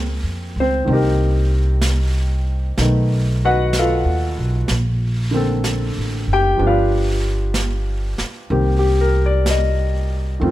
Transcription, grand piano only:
0, 0, Header, 1, 2, 480
1, 0, Start_track
1, 0, Tempo, 955414
1, 434, Time_signature, 4, 2, 24, 8
1, 5281, End_track
2, 0, Start_track
2, 0, Title_t, "Grand piano"
2, 0, Program_c, 0, 0
2, 0, Control_c, 0, 64, 127
2, 0, Note_on_c, 0, 56, 41
2, 0, Note_on_c, 0, 58, 36
2, 0, Note_on_c, 0, 60, 37
2, 0, Note_on_c, 0, 65, 44
2, 0, Note_on_c, 0, 66, 47
2, 0, Note_on_c, 0, 68, 43
2, 295, Note_off_c, 0, 60, 0
2, 302, Note_on_c, 0, 72, 72
2, 303, Note_on_c, 0, 60, 58
2, 422, Note_off_c, 0, 65, 0
2, 426, Note_off_c, 0, 58, 0
2, 426, Note_on_c, 0, 51, 47
2, 431, Note_off_c, 0, 56, 0
2, 434, Note_on_c, 0, 58, 39
2, 436, Note_off_c, 0, 60, 0
2, 440, Note_off_c, 0, 68, 0
2, 441, Control_c, 0, 64, 0
2, 442, Note_off_c, 0, 72, 0
2, 443, Note_on_c, 0, 60, 42
2, 450, Note_off_c, 0, 66, 0
2, 453, Note_on_c, 0, 63, 48
2, 460, Note_off_c, 0, 58, 0
2, 462, Note_off_c, 0, 63, 0
2, 464, Note_on_c, 0, 70, 59
2, 467, Note_on_c, 0, 67, 50
2, 468, Note_on_c, 0, 58, 48
2, 469, Note_on_c, 0, 63, 48
2, 518, Control_c, 0, 64, 127
2, 763, Note_off_c, 0, 70, 0
2, 764, Note_off_c, 0, 67, 0
2, 765, Note_off_c, 0, 58, 0
2, 766, Note_off_c, 0, 63, 0
2, 1390, Note_off_c, 0, 51, 0
2, 1398, Note_off_c, 0, 60, 0
2, 1399, Control_c, 0, 64, 0
2, 1400, Note_on_c, 0, 51, 48
2, 1402, Note_on_c, 0, 57, 42
2, 1404, Note_on_c, 0, 59, 44
2, 1406, Note_on_c, 0, 63, 51
2, 1480, Control_c, 0, 64, 127
2, 1732, Note_on_c, 0, 66, 68
2, 1735, Note_on_c, 0, 75, 67
2, 1735, Note_on_c, 0, 78, 88
2, 1736, Note_on_c, 0, 71, 65
2, 1876, Note_off_c, 0, 66, 0
2, 1878, Note_off_c, 0, 71, 0
2, 1878, Note_off_c, 0, 75, 0
2, 1878, Note_off_c, 0, 78, 0
2, 1903, Note_on_c, 0, 77, 70
2, 1904, Note_on_c, 0, 69, 55
2, 1906, Note_on_c, 0, 71, 56
2, 1907, Note_on_c, 0, 65, 54
2, 2202, Note_off_c, 0, 69, 0
2, 2202, Note_off_c, 0, 77, 0
2, 2203, Note_off_c, 0, 71, 0
2, 2204, Note_off_c, 0, 65, 0
2, 2355, Note_off_c, 0, 51, 0
2, 2356, Note_off_c, 0, 57, 0
2, 2357, Note_off_c, 0, 59, 0
2, 2358, Note_off_c, 0, 63, 0
2, 2359, Control_c, 0, 64, 0
2, 2432, Control_c, 0, 64, 127
2, 2668, Note_on_c, 0, 50, 51
2, 2678, Note_on_c, 0, 58, 47
2, 2684, Note_on_c, 0, 60, 46
2, 2694, Note_on_c, 0, 69, 61
2, 3180, Note_on_c, 0, 79, 86
2, 3182, Note_on_c, 0, 67, 69
2, 3297, Note_on_c, 0, 53, 48
2, 3308, Note_off_c, 0, 50, 0
2, 3309, Note_on_c, 0, 59, 45
2, 3312, Note_off_c, 0, 58, 0
2, 3313, Note_on_c, 0, 62, 44
2, 3316, Note_off_c, 0, 60, 0
2, 3317, Note_off_c, 0, 67, 0
2, 3318, Control_c, 0, 64, 0
2, 3320, Note_off_c, 0, 79, 0
2, 3321, Note_off_c, 0, 69, 0
2, 3324, Note_on_c, 0, 67, 52
2, 3350, Note_on_c, 0, 65, 56
2, 3350, Note_on_c, 0, 77, 71
2, 3353, Note_on_c, 0, 71, 56
2, 3353, Note_on_c, 0, 74, 59
2, 3412, Control_c, 0, 64, 127
2, 3532, Note_off_c, 0, 65, 0
2, 3532, Note_off_c, 0, 77, 0
2, 3534, Note_off_c, 0, 71, 0
2, 3535, Note_off_c, 0, 74, 0
2, 4264, Note_off_c, 0, 53, 0
2, 4269, Note_off_c, 0, 59, 0
2, 4271, Note_off_c, 0, 67, 0
2, 4271, Note_on_c, 0, 51, 43
2, 4272, Note_off_c, 0, 62, 0
2, 4273, Note_on_c, 0, 58, 41
2, 4277, Control_c, 0, 64, 0
2, 4277, Note_on_c, 0, 60, 42
2, 4279, Note_on_c, 0, 67, 52
2, 4354, Control_c, 0, 64, 127
2, 4408, Note_off_c, 0, 67, 0
2, 4415, Note_on_c, 0, 67, 63
2, 4527, Note_on_c, 0, 70, 73
2, 4580, Note_off_c, 0, 67, 0
2, 4635, Note_off_c, 0, 70, 0
2, 4652, Note_on_c, 0, 74, 69
2, 4738, Note_off_c, 0, 74, 0
2, 4774, Note_on_c, 0, 75, 71
2, 5216, Note_off_c, 0, 51, 0
2, 5223, Note_on_c, 0, 51, 51
2, 5228, Note_on_c, 0, 57, 44
2, 5231, Note_off_c, 0, 60, 0
2, 5233, Note_off_c, 0, 58, 0
2, 5237, Control_c, 0, 64, 0
2, 5238, Note_on_c, 0, 60, 45
2, 5245, Note_on_c, 0, 65, 54
2, 5281, Note_off_c, 0, 51, 0
2, 5281, Note_off_c, 0, 57, 0
2, 5281, Note_off_c, 0, 60, 0
2, 5281, Note_off_c, 0, 65, 0
2, 5281, Note_off_c, 0, 75, 0
2, 5281, End_track
0, 0, End_of_file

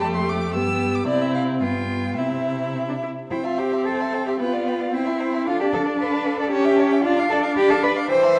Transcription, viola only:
0, 0, Header, 1, 2, 480
1, 0, Start_track
1, 0, Key_signature, 0, "major"
1, 0, Tempo, 534283
1, 16, Time_signature, 2, 2, 24, 8
1, 1456, Tempo, 559180
1, 3376, Tempo, 529568
1, 7486, End_track
2, 0, Start_track
2, 0, Title_t, "Viola"
2, 0, Program_c, 0, 41
2, 18, Note_on_c, 0, 57, 53
2, 500, Note_on_c, 0, 59, 48
2, 514, Note_off_c, 0, 57, 0
2, 961, Note_off_c, 0, 59, 0
2, 967, Note_on_c, 0, 60, 55
2, 1456, Note_on_c, 0, 59, 46
2, 1469, Note_off_c, 0, 60, 0
2, 1936, Note_on_c, 0, 60, 42
2, 1949, Note_off_c, 0, 59, 0
2, 2377, Note_off_c, 0, 60, 0
2, 2426, Note_on_c, 0, 60, 40
2, 2474, Note_off_c, 0, 60, 0
2, 2544, Note_on_c, 0, 62, 39
2, 2593, Note_off_c, 0, 62, 0
2, 2665, Note_on_c, 0, 64, 37
2, 2733, Note_off_c, 0, 64, 0
2, 2909, Note_on_c, 0, 60, 53
2, 3868, Note_on_c, 0, 59, 54
2, 3882, Note_off_c, 0, 60, 0
2, 4341, Note_off_c, 0, 59, 0
2, 4346, Note_on_c, 0, 60, 50
2, 4833, Note_on_c, 0, 62, 63
2, 4847, Note_off_c, 0, 60, 0
2, 5780, Note_off_c, 0, 62, 0
2, 5786, Note_on_c, 0, 61, 69
2, 6267, Note_on_c, 0, 62, 69
2, 6281, Note_off_c, 0, 61, 0
2, 7215, Note_on_c, 0, 52, 80
2, 7228, Note_off_c, 0, 62, 0
2, 7486, Note_off_c, 0, 52, 0
2, 7486, End_track
0, 0, End_of_file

